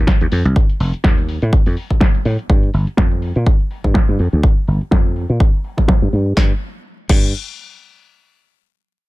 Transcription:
0.07 kick loud
0.07 snare loud
0.07 closed hi-hat soft
0.21 0.30 D#2 medium
0.21 closed hi-hat soft
0.32 0.42 F2 medium
0.32 open hi-hat loud
0.45 0.53 C2 medium
0.45 closed hi-hat soft
0.56 kick loud
0.56 closed hi-hat medium
0.70 closed hi-hat soft
0.80 0.91 F1 medium
0.80 open hi-hat loud
0.94 muted slap bass stroke soft
0.94 closed hi-hat soft
1.04 1.37 D#2 medium
1.04 kick loud
1.04 snare loud
1.04 closed hi-hat soft
1.18 closed hi-hat soft
1.29 open hi-hat medium
1.42 1.50 A2 medium
1.42 closed hi-hat medium
1.53 kick loud
1.53 closed hi-hat soft
1.66 1.75 F2 medium
1.66 open hi-hat medium
1.77 open hi-hat loud
1.90 kick medium
1.90 closed hi-hat medium
2.01 kick loud
2.01 snare loud
2.01 closed hi-hat medium
2.15 closed hi-hat soft
2.25 2.36 A2 medium
2.25 open hi-hat loud
2.39 closed hi-hat medium
2.50 2.69 G2 loud
2.50 kick loud
2.50 closed hi-hat medium
2.63 closed hi-hat soft
2.74 2.84 G1 medium
2.74 open hi-hat loud
2.87 muted slap bass stroke soft
2.87 closed hi-hat medium
2.97 3.31 F2 medium
2.97 kick loud
2.97 snare loud
3.11 closed hi-hat soft
3.22 open hi-hat medium
3.36 3.44 A#2 medium
3.36 closed hi-hat medium
3.46 kick loud
3.60 closed hi-hat soft
3.71 open hi-hat loud
3.84 3.92 G2 medium
3.84 kick medium
3.84 closed hi-hat medium
3.94 kick loud
3.94 snare loud
4.08 4.17 G2 medium
4.08 closed hi-hat soft
4.19 4.30 F2 medium
4.19 open hi-hat medium
4.33 4.41 D2 loud
4.33 closed hi-hat medium
4.43 kick loud
4.57 closed hi-hat soft
4.68 4.78 G1 medium
4.68 open hi-hat loud
4.81 closed hi-hat medium
4.91 5.24 F2 loud
4.91 kick loud
4.91 snare loud
5.05 closed hi-hat soft
5.16 open hi-hat medium
5.29 5.38 A#2 medium
5.29 closed hi-hat medium
5.40 kick loud
5.54 open hi-hat medium
5.64 open hi-hat loud
5.77 kick medium
5.77 snare soft
5.77 closed hi-hat medium
5.88 kick loud
5.88 snare loud
6.02 6.10 G2 medium
6.02 closed hi-hat soft
6.13 6.32 G2 loud
6.13 open hi-hat loud
6.26 closed hi-hat medium
6.37 6.52 G2 medium
6.37 kick loud
6.37 snare medium
7.09 7.32 G2 loud
7.09 kick loud
7.09 crash medium

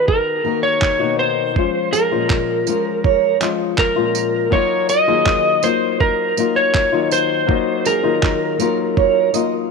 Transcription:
0.00 0.43 D#3 medium
0.00 0.45 D#4 medium
0.00 0.46 F#4 medium
0.08 0.60 A#4 medium
0.08 kick loud
0.44 1.00 D#3 medium
0.44 0.99 A#3 medium
0.44 0.99 D#4 medium
0.44 0.98 F#4 medium
0.44 0.97 A#4 medium
0.63 1.19 C#5 loud
0.81 kick loud
0.81 clap medium
0.99 1.56 B2 medium
0.99 1.55 D#3 soft
0.99 1.56 A#3 medium
0.99 1.56 D#4 medium
0.99 1.55 F#4 medium
1.19 1.95 C5 medium
1.55 2.11 F3 medium
1.55 2.11 G#3 medium
1.55 2.11 C#4 medium
1.55 2.10 F4 medium
1.55 kick loud
1.93 2.10 G#4 medium
1.93 3.37 A#4 medium
1.93 tambourine medium
2.11 2.68 A#2 soft
2.11 2.65 F3 medium
2.11 2.66 G#3 medium
2.11 2.67 C#4 medium
2.11 2.67 F4 medium
2.30 kick loud
2.30 clap loud
2.67 3.40 F3 medium
2.67 3.40 G#3 medium
2.67 3.41 C#4 medium
2.67 3.43 F4 medium
2.67 2.85 A#4 medium
2.67 tambourine medium
3.04 3.40 C#5 medium
3.04 kick loud
3.40 3.96 F3 medium
3.40 3.96 G#3 medium
3.40 3.95 C#4 medium
3.40 3.95 F4 medium
3.40 3.59 D#5 medium
3.40 clap medium
3.40 tambourine medium
3.78 4.55 A#4 medium
3.78 kick loud
3.78 clap loud
3.96 4.53 A#2 medium
3.96 4.51 F3 medium
3.96 4.52 G#3 medium
3.96 4.52 C#4 medium
3.96 4.52 F4 medium
4.15 tambourine medium
4.50 5.07 F#3 medium
4.50 7.44 A#3 medium
4.50 5.07 A#3 medium
4.50 5.07 D#4 medium
4.50 7.44 F4 medium
4.50 7.45 F#4 medium
4.50 4.88 A#4 medium
4.50 4.89 C#5 medium
4.50 kick loud
4.54 5.06 F4 medium
4.54 7.46 D#5 medium
4.89 5.66 D#5 loud
4.89 tambourine medium
5.07 5.64 D#3 medium
5.07 5.61 F#3 medium
5.07 5.62 A#3 medium
5.07 5.63 D#4 medium
5.07 5.63 F4 medium
5.07 5.43 G#4 medium
5.26 kick loud
5.26 clap loud
5.62 6.36 F#3 medium
5.62 6.37 A#3 medium
5.62 6.38 D#4 medium
5.62 6.38 F4 medium
5.62 5.81 A#4 medium
5.62 5.98 C5 medium
5.62 tambourine medium
6.00 6.58 A#4 medium
6.00 kick loud
6.37 6.93 F#3 medium
6.37 6.92 A#3 medium
6.37 6.92 D#4 medium
6.37 6.91 F4 medium
6.37 6.90 A#4 medium
6.37 tambourine medium
6.56 7.12 C#5 medium
6.74 kick loud
6.74 clap loud
6.92 7.49 D#3 medium
6.92 7.46 F#3 medium
6.92 7.47 A#3 medium
6.92 7.48 D#4 medium
6.92 7.48 F4 medium
7.11 7.88 C5 medium
7.11 tambourine medium
7.47 8.04 F#3 medium
7.47 9.71 A#3 medium
7.47 8.03 A#3 medium
7.47 8.02 D#4 medium
7.47 9.71 F4 medium
7.47 8.02 F4 medium
7.47 9.71 F#4 medium
7.47 kick loud
7.51 9.71 D#5 medium
7.85 8.04 G#4 medium
7.85 9.30 A#4 medium
7.85 tambourine medium
8.03 8.60 D#3 medium
8.03 8.57 F#3 medium
8.03 8.59 A#3 medium
8.03 8.60 D#4 medium
8.03 8.59 F4 medium
8.23 kick loud
8.23 clap medium
8.59 9.32 F#3 medium
8.59 9.34 A#3 medium
8.59 9.34 D#4 medium
8.59 9.34 F4 medium
8.59 8.77 A#4 medium
8.59 tambourine medium
8.97 9.32 C#5 medium
8.97 kick loud
9.33 9.71 F#3 medium
9.33 9.71 A#3 medium
9.33 9.71 D#4 medium
9.33 9.71 F4 medium
9.33 9.52 D#5 medium
9.33 tambourine medium

